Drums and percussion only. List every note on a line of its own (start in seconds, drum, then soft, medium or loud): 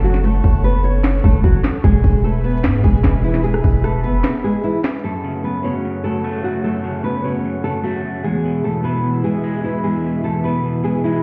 0.04 closed hi-hat medium
0.14 snare medium
0.24 closed hi-hat medium
0.44 kick medium
0.44 open hi-hat medium
0.64 closed hi-hat medium
0.84 closed hi-hat medium
1.04 snare loud
1.04 clap medium
1.04 closed hi-hat soft
1.09 closed hi-hat medium
1.14 closed hi-hat medium
1.19 closed hi-hat medium
1.24 kick loud
1.44 kick medium
1.44 closed hi-hat medium
1.64 snare loud
1.64 clap medium
1.64 closed hi-hat medium
1.84 kick loud
1.84 closed hi-hat medium
2.04 kick medium
2.04 open hi-hat medium
2.24 closed hi-hat medium
2.44 closed hi-hat medium
2.51 closed hi-hat medium
2.57 closed hi-hat medium
2.64 snare loud
2.64 clap medium
2.64 closed hi-hat medium
2.84 kick loud
2.84 closed hi-hat medium
2.91 closed hi-hat medium
2.97 closed hi-hat soft
3.04 kick medium
3.04 snare loud
3.04 clap medium
3.04 closed hi-hat medium
3.24 closed hi-hat medium
3.34 snare medium
3.44 closed hi-hat medium
3.54 cross-stick medium
3.64 kick medium
3.64 open hi-hat medium
3.84 cross-stick medium
3.84 closed hi-hat medium
4.04 closed hi-hat medium
4.24 snare loud
4.24 clap medium
4.24 closed hi-hat medium
4.64 closed hi-hat medium
4.84 snare loud
4.84 clap medium
4.84 closed hi-hat medium
4.89 closed hi-hat medium
4.94 closed hi-hat medium
4.99 closed hi-hat medium